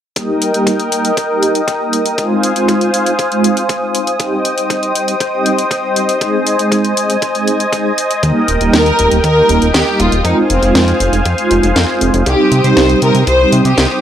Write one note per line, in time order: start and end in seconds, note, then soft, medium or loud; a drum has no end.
0.16 0.51 G3 medium
0.16 0.51 A#3 medium
0.16 0.51 D#4 medium
0.16 0.51 G4 medium
0.16 2.16 A#4 medium
0.16 2.16 D#5 medium
0.16 2.16 G5 medium
0.16 12.22 D#6 medium
0.16 kick loud
0.16 closed hi-hat medium
0.42 closed hi-hat medium
0.54 0.89 G3 medium
0.54 0.89 A#3 medium
0.54 0.89 D#4 medium
0.54 0.89 G4 loud
0.54 closed hi-hat soft
0.67 kick loud
0.67 closed hi-hat medium
0.80 closed hi-hat soft
0.92 1.12 G3 medium
0.92 1.12 A#3 medium
0.92 1.12 D#4 medium
0.92 1.12 G4 medium
0.92 closed hi-hat medium
1.05 closed hi-hat medium
1.17 kick loud
1.17 closed hi-hat medium
1.30 1.61 G3 medium
1.30 1.61 A#3 medium
1.30 1.61 D#4 medium
1.30 1.61 G4 loud
1.43 closed hi-hat medium
1.55 closed hi-hat medium
1.68 kick loud
1.68 closed hi-hat medium
1.80 2.15 G3 medium
1.80 2.15 A#3 medium
1.80 2.15 D#4 medium
1.80 2.15 G4 medium
1.93 closed hi-hat medium
2.06 closed hi-hat medium
2.18 2.53 G#3 medium
2.18 2.53 C4 medium
2.18 2.53 D#4 medium
2.18 2.53 F4 loud
2.18 4.18 C5 medium
2.18 4.18 F5 medium
2.18 4.18 G#5 medium
2.18 kick loud
2.18 closed hi-hat medium
2.43 closed hi-hat medium
2.56 2.91 G#3 medium
2.56 2.91 C4 medium
2.56 2.91 D#4 medium
2.56 2.91 F4 loud
2.56 closed hi-hat medium
2.68 kick loud
2.68 closed hi-hat medium
2.81 closed hi-hat soft
2.94 closed hi-hat medium
3.06 closed hi-hat medium
3.19 kick loud
3.19 closed hi-hat medium
3.31 3.63 G#3 medium
3.31 3.63 C4 medium
3.31 3.63 D#4 medium
3.31 3.63 F4 loud
3.31 closed hi-hat soft
3.44 closed hi-hat medium
3.57 closed hi-hat medium
3.69 kick loud
3.69 closed hi-hat medium
3.82 4.17 G#3 medium
3.82 4.17 C4 medium
3.82 4.17 D#4 medium
3.82 4.17 F4 medium
3.95 closed hi-hat medium
4.07 closed hi-hat medium
4.20 4.55 G3 medium
4.20 4.55 C4 medium
4.20 4.55 D#4 medium
4.20 4.55 G4 loud
4.20 8.19 C5 medium
4.20 10.21 D#5 medium
4.20 6.19 G5 medium
4.20 kick loud
4.20 closed hi-hat medium
4.45 closed hi-hat medium
4.57 4.92 G3 loud
4.57 4.92 C4 medium
4.57 4.92 D#4 medium
4.57 4.92 G4 loud
4.57 closed hi-hat soft
4.70 kick loud
4.70 closed hi-hat medium
4.83 closed hi-hat soft
4.95 5.15 G3 medium
4.95 5.15 G4 medium
4.95 closed hi-hat medium
5.08 closed hi-hat medium
5.20 kick loud
5.20 closed hi-hat medium
5.33 5.64 G3 medium
5.33 5.64 C4 medium
5.33 5.64 D#4 medium
5.33 5.64 G4 loud
5.46 closed hi-hat medium
5.58 closed hi-hat medium
5.71 kick loud
5.71 closed hi-hat medium
5.83 6.18 G3 medium
5.83 6.18 C4 medium
5.83 6.18 D#4 medium
5.83 6.18 G4 medium
5.96 closed hi-hat medium
6.09 closed hi-hat medium
6.21 6.56 G#3 medium
6.21 6.56 C4 medium
6.21 6.56 D#4 medium
6.21 6.56 G#4 loud
6.21 8.21 G#5 medium
6.21 kick loud
6.21 closed hi-hat medium
6.47 closed hi-hat medium
6.59 6.94 G#3 loud
6.59 6.94 C4 medium
6.59 6.94 D#4 medium
6.59 6.94 G#4 loud
6.59 closed hi-hat soft
6.72 kick loud
6.72 closed hi-hat medium
6.85 closed hi-hat soft
6.97 7.17 G#3 medium
6.97 7.17 G#4 medium
6.97 closed hi-hat medium
7.10 closed hi-hat soft
7.22 kick loud
7.22 closed hi-hat medium
7.35 7.66 G#3 medium
7.35 7.66 C4 medium
7.35 7.66 D#4 medium
7.35 7.66 G#4 loud
7.35 closed hi-hat soft
7.48 closed hi-hat medium
7.60 closed hi-hat soft
7.73 7.92 G#3 medium
7.73 7.92 C4 medium
7.73 7.92 D#4 medium
7.73 7.92 G#4 loud
7.73 kick loud
7.73 closed hi-hat medium
7.98 closed hi-hat medium
8.11 closed hi-hat soft
8.23 8.32 D#2 medium
8.23 8.58 G3 medium
8.23 8.58 A#3 medium
8.23 8.58 D#4 medium
8.23 8.58 G4 loud
8.23 10.23 A#4 medium
8.23 10.23 G5 medium
8.23 kick loud
8.23 closed hi-hat medium
8.48 8.57 D#1 medium
8.48 closed hi-hat medium
8.61 8.70 D#1 medium
8.61 8.96 G3 medium
8.61 8.96 A#3 medium
8.61 8.96 D#4 medium
8.61 8.96 G4 loud
8.61 closed hi-hat soft
8.73 8.92 D#2 loud
8.73 9.20 A#4 loud
8.73 kick loud
8.73 snare loud
8.73 closed hi-hat medium
8.86 closed hi-hat soft
8.99 9.08 D#1 medium
8.99 9.18 G3 medium
8.99 9.18 D#4 medium
8.99 9.18 G4 medium
8.99 closed hi-hat medium
9.11 9.20 D#1 medium
9.11 closed hi-hat soft
9.24 9.42 D#2 medium
9.24 9.71 A#4 loud
9.24 kick loud
9.24 closed hi-hat medium
9.36 9.68 G3 medium
9.36 9.68 A#3 medium
9.36 9.68 D#4 medium
9.36 9.68 G4 loud
9.49 9.58 D#1 loud
9.49 closed hi-hat medium
9.62 9.71 D#1 loud
9.62 closed hi-hat soft
9.74 9.83 D#2 medium
9.74 10.00 G4 loud
9.74 kick loud
9.74 snare loud
9.74 closed hi-hat medium
9.87 10.22 G3 medium
9.87 10.22 A#3 medium
9.87 10.22 D#4 medium
9.87 10.22 G4 medium
10.00 10.09 D#1 medium
10.00 10.25 F4 medium
10.00 closed hi-hat medium
10.12 10.21 D#1 medium
10.12 closed hi-hat soft
10.25 10.34 F2 medium
10.25 10.60 C4 medium
10.25 10.36 D#4 medium
10.25 10.60 D#4 medium
10.25 10.60 F4 medium
10.25 12.25 C5 medium
10.25 12.25 F5 medium
10.25 12.25 G#5 medium
10.25 kick loud
10.25 closed hi-hat medium
10.50 10.59 F1 medium
10.50 10.74 C4 medium
10.50 closed hi-hat medium
10.62 10.72 F1 medium
10.62 10.97 G#3 medium
10.62 10.97 C4 medium
10.62 10.97 D#4 medium
10.62 10.97 F4 loud
10.62 closed hi-hat soft
10.75 10.93 F2 loud
10.75 11.22 C4 medium
10.75 kick loud
10.75 snare loud
10.75 closed hi-hat medium
10.88 closed hi-hat soft
11.00 11.09 F1 medium
11.00 11.20 F4 medium
11.00 closed hi-hat medium
11.13 11.22 F1 medium
11.13 closed hi-hat soft
11.25 11.35 F2 medium
11.25 kick loud
11.25 closed hi-hat medium
11.38 11.69 G#3 loud
11.38 11.69 C4 medium
11.38 11.69 D#4 medium
11.38 11.69 F4 loud
11.38 closed hi-hat soft
11.51 11.60 F1 medium
11.51 closed hi-hat medium
11.63 11.72 F1 medium
11.63 closed hi-hat soft
11.76 11.85 F2 medium
11.76 kick loud
11.76 snare loud
11.76 closed hi-hat medium
11.89 12.23 G#3 medium
11.89 12.23 C4 medium
11.89 12.23 D#4 medium
11.89 12.23 F4 medium
12.01 12.10 F1 medium
12.01 closed hi-hat medium
12.14 12.23 F1 loud
12.14 closed hi-hat soft
12.26 12.35 C2 medium
12.26 12.62 G4 loud
12.26 14.01 C5 medium
12.26 14.01 G5 medium
12.26 14.01 D#6 medium
12.26 kick loud
12.26 closed hi-hat medium
12.52 12.61 C3 medium
12.52 closed hi-hat medium
12.64 12.73 C3 medium
12.64 12.99 G3 medium
12.64 12.99 C4 medium
12.64 12.99 D#4 medium
12.64 12.99 G4 loud
12.64 13.02 C5 loud
12.64 closed hi-hat soft
12.77 12.95 C2 loud
12.77 kick loud
12.77 snare loud
12.77 closed hi-hat medium
12.90 closed hi-hat soft
13.02 13.11 C3 medium
13.02 13.22 G3 medium
13.02 13.26 A#4 loud
13.02 closed hi-hat medium
13.15 13.24 C3 medium
13.15 closed hi-hat soft
13.27 13.45 C2 medium
13.27 13.63 C5 loud
13.27 kick loud
13.27 closed hi-hat medium
13.40 13.71 G3 loud
13.40 13.71 C4 medium
13.40 13.71 D#4 medium
13.40 13.71 G4 loud
13.52 13.62 C3 loud
13.52 closed hi-hat medium
13.65 13.74 C3 loud
13.65 14.01 G4 loud
13.65 closed hi-hat soft
13.78 13.87 C2 medium
13.78 kick loud
13.78 snare loud
13.78 closed hi-hat medium
13.90 14.01 G3 medium
13.90 14.01 C4 medium
13.90 14.01 D#4 medium
13.90 14.01 G4 medium